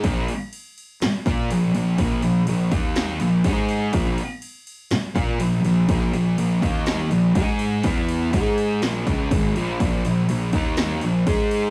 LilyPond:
<<
  \new Staff \with { instrumentName = "Distorted electric guitar" } { \clef bass \time 4/4 \key ees \lydian \tempo 4 = 123 <bes, f bes>8 r2 <bes f' bes'>8 <bes, f>8 <bes, f>8 | <bes, f bes>8 <bes, f>8 <bes, f>8 <ees bes ees'>4 <bes, f>8 <aes ees' aes'>4 | <bes, f bes>8 r2 <bes f' bes'>8 <bes, f>8 <bes, f>8 | <bes, f bes>8 <bes, f>8 <bes, f>8 <ees bes ees'>4 <bes, f>8 <aes ees' aes'>4 |
<e b e'>4 <aes ees' aes'>4 <bes, f bes>8 <des aes des'>8 <aes, ees aes>8 <bes, f bes>8 | <bes, f bes>8 <bes, f>8 <bes, f>8 <ees bes ees'>4 <bes, f>8 <aes ees' aes'>4 | }
  \new Staff \with { instrumentName = "Picked electric bass" } { \clef bass \time 4/4 \key ees \lydian bes,,8 r2 bes,8 bes,,8 bes,,8 | bes,,8 bes,,8 bes,,8 ees,4 bes,,8 aes,4 | bes,,8 r2 bes,8 bes,,8 bes,,8 | bes,,8 bes,,8 bes,,8 ees,4 bes,,8 aes,4 |
e,4 aes,4 bes,,8 des,8 aes,,8 bes,,8 | bes,,8 bes,,8 bes,,8 ees,4 bes,,8 aes,4 | }
  \new DrumStaff \with { instrumentName = "Drums" } \drummode { \time 4/4 <cymc bd>8 cymc8 cymc8 cymc8 <cymc sn>8 <cymc bd>8 cymc8 cymc8 | <cymc bd>8 cymc8 cymc8 <cymc bd>8 <cymc sn>8 cymc8 <cymc bd>8 cymc8 | <cymc bd>16 sn16 cymc8 cymc8 cymc8 <cymc sn>8 <cymc bd>8 cymc8 cymc8 | <cymc bd>8 cymc8 cymc8 <cymc bd>8 <cymc sn>8 cymc8 <cymc bd>8 cymc8 |
<cymc bd>8 cymc8 <cymc bd>8 cymc8 <cymc sn>8 <cymc bd>8 <cymc bd>8 cymc8 | <cymc bd>8 cymc8 cymc8 <cymc bd>8 <cymc sn>8 cymc8 <cymc bd>8 cymc8 | }
>>